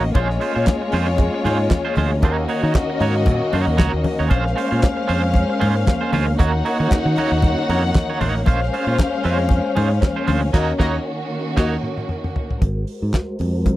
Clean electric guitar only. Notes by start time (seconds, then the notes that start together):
0.04 muted clean electric guitar stroke
0.15 G#3 C#4 F4 C5
0.29 muted clean electric guitar stroke
0.40 G#3 C#4 F4 C5
0.55 G#3 C#4 F4 C5
0.67 muted clean electric guitar stroke
0.82 muted clean electric guitar stroke
0.92 G#3 C#4 F4 C5
1.08 muted clean electric guitar stroke
1.34 muted clean electric guitar stroke
1.44 G#3 C#4 F4 C5
1.59 muted clean electric guitar stroke
1.70 muted clean electric guitar stroke
1.85 G#3 C#4 F4 C5
1.97 G#3 C#4 F4 C5
2.12 muted clean electric guitar stroke
2.23 A#3 D#4 F#4 C#5
2.38 muted clean electric guitar stroke
2.48 A#3 D#4 F#4 C#5
2.63 A#3 D#4 F#4 C#5
2.75 muted clean electric guitar stroke
2.90 muted clean electric guitar stroke
3.01 A#3 D#4 F#4 C#5
3.16 muted clean electric guitar stroke
3.42 muted clean electric guitar stroke
3.53 A#3 D#4 F#4 C#5
3.67 muted clean electric guitar stroke
3.77 A#3 D#4 F#4 C#5
3.93 muted clean electric guitar stroke
4.04 muted clean electric guitar stroke
4.19 A#3 D#4 F#4 C#5
4.29 G#3 C#4 F4 C5
4.45 muted clean electric guitar stroke
4.56 G#3 C#4 F4 C5
4.71 G#3 C#4 F4 C5
4.82 muted clean electric guitar stroke
4.97 muted clean electric guitar stroke
5.07 G#3 C#4 F4 C5
5.23 muted clean electric guitar stroke
5.49 muted clean electric guitar stroke
5.60 G#3 C#4 F4 C5
5.76 muted clean electric guitar stroke
5.87 muted clean electric guitar stroke
6.01 G#3 C#4 F4 C5
6.12 G#3 C#4 F4 C5
6.27 muted clean electric guitar stroke
6.39 A#3 D#4 F#4 C#5
6.53 muted clean electric guitar stroke
6.65 A#3 D#4 F#4 C#5
6.79 A#3 D#4 F#4 C#5
6.92 muted clean electric guitar stroke
7.06 muted clean electric guitar stroke
7.17 A#3 D#4 F#4 C#5
7.32 muted clean electric guitar stroke
7.58 muted clean electric guitar stroke
7.70 A#3 D#4 F#4 C#5
7.84 muted clean electric guitar stroke
7.95 muted clean electric guitar stroke
8.10 A#3 D#4 F#4 C#5
8.20 A#3 D#4 F#4 C#5
8.35 muted clean electric guitar stroke
8.46 G#3 C#4 F4 C5
8.62 muted clean electric guitar stroke
8.73 G#3 C#4 F4 C5
8.87 G#3 C#4 F4 C5
9.12 muted clean electric guitar stroke
9.24 G#3 C#4 F4 C5
9.39 muted clean electric guitar stroke
9.65 muted clean electric guitar stroke
9.76 G#3 C#4 F4 C5
9.90 muted clean electric guitar stroke
10.01 muted clean electric guitar stroke
10.16 G#3 C#4 F4 C5
10.27 G#3 C#4 F4 C5
10.42 muted clean electric guitar stroke
10.53 A#3 D#4 F#4 C#5
10.79 A#3 D#4 F#4 C#5
11.57 A#3 D#4 F#4 C#5